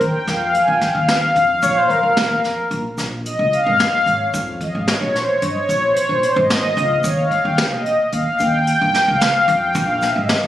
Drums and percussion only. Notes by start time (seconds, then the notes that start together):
0.01 kick, closed hi-hat
0.27 snare, closed hi-hat
0.54 closed hi-hat
0.81 kick, snare, closed hi-hat
1.08 snare, closed hi-hat
1.36 closed hi-hat
1.63 kick, closed hi-hat, shaker
1.90 kick, closed hi-hat
2.17 snare, closed hi-hat
2.44 snare, closed hi-hat
2.71 closed hi-hat
2.98 snare, closed hi-hat, shaker
3.26 closed hi-hat
3.53 closed hi-hat
3.80 snare, closed hi-hat, shaker
4.07 closed hi-hat
4.34 kick, closed hi-hat, shaker
4.61 kick, closed hi-hat
4.88 snare, closed hi-hat
5.15 snare, closed hi-hat
5.42 closed hi-hat
5.69 closed hi-hat, shaker
5.96 closed hi-hat
6.23 closed hi-hat
6.50 snare, closed hi-hat, shaker
6.77 closed hi-hat
7.04 kick, closed hi-hat, shaker
7.31 kick, closed hi-hat
7.58 snare, closed hi-hat
7.86 closed hi-hat
8.12 closed hi-hat
8.39 closed hi-hat, shaker
8.67 closed hi-hat
8.94 snare, closed hi-hat
9.21 snare, closed hi-hat, shaker
9.48 closed hi-hat
9.74 kick, closed hi-hat, shaker
10.02 snare, closed hi-hat, shaker
10.29 snare, closed hi-hat, shaker